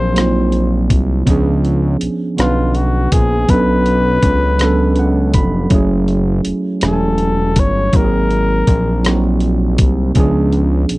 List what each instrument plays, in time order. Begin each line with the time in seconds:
Already playing: analog synth bass A#1, tine electric piano F#3 A#3 C4 D#4 G#4, flugelhorn C5
0.13 tine electric piano F#3 A#3 C4 D#4, closed hi-hat
0.18 tine electric piano F4, cross-stick
0.52 closed hi-hat
0.90 analog synth bass C2, kick, closed hi-hat
1.25 analog synth bass C#2, tine electric piano F3 B3 C#4, kick, closed hi-hat
1.30 tine electric piano D4 G#4
1.65 closed hi-hat
2.01 analog synth bass B1, closed hi-hat
2.36 analog synth bass B1, tine electric piano D3 B3 C#4, flugelhorn F4, cross-stick, closed hi-hat
2.40 tine electric piano D4 B4
2.75 flugelhorn F#4, closed hi-hat
3.12 analog synth bass A#1, flugelhorn G#4, kick, closed hi-hat
3.48 analog synth bass B1, tine electric piano F#3 B3 C#4, flugelhorn B4, kick, closed hi-hat
3.52 tine electric piano D4 A4
3.86 closed hi-hat
4.22 analog synth bass C#2, kick, closed hi-hat
4.58 tine electric piano F#3 B3 C#4, cross-stick, closed hi-hat
4.63 tine electric piano D4 A4
4.96 tine electric piano F#5, closed hi-hat
5.34 analog synth bass F1, tine electric piano B5, kick, closed hi-hat
5.70 analog synth bass F#1, tine electric piano F#3 A3 C#4, kick, closed hi-hat
5.74 tine electric piano E4 G#4
6.08 closed hi-hat
6.45 analog synth bass E1, closed hi-hat
6.81 analog synth bass E1, tine electric piano F#3 A3 C#4, flugelhorn A4, cross-stick, closed hi-hat
6.85 tine electric piano E4 G4
6.93 tine electric piano G#5
7.18 closed hi-hat
7.56 analog synth bass G1, flugelhorn C#5, kick, closed hi-hat
7.93 analog synth bass G#1, tine electric piano F#3 A#3 C4, flugelhorn A#4, kick, closed hi-hat
7.97 tine electric piano D#4 G4
8.05 tine electric piano G#4
8.31 closed hi-hat
8.67 analog synth bass A#1, kick, closed hi-hat
9.03 tine electric piano F#3 A#3 C4, cross-stick, closed hi-hat
9.08 tine electric piano D#4 F#4
9.40 closed hi-hat
9.78 analog synth bass C2, kick, closed hi-hat
10.14 analog synth bass C#2, tine electric piano F3 B3 C#4, kick, closed hi-hat
10.19 tine electric piano D4 G#4
10.52 closed hi-hat
10.89 analog synth bass B1, closed hi-hat